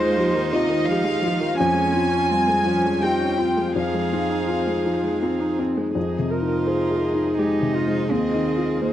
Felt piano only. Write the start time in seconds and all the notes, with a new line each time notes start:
Already playing: D#2 F4
0.19 G4
0.54 F4
0.91 G4
1.25 F4
1.60 F2
1.96 F4
2.31 G3
2.65 F4
3.02 G4
3.39 F4
3.76 F2
4.13 D#4
4.47 F4
4.86 D#4
5.22 F4
5.59 D#4
5.95 F2
6.19 C3
6.41 D#4
6.67 C5
6.91 G#4
7.15 D#4
7.39 G#3
7.62 C3
7.87 G#3
8.09 D#2
8.34 D#3
8.57 F4
8.82 C5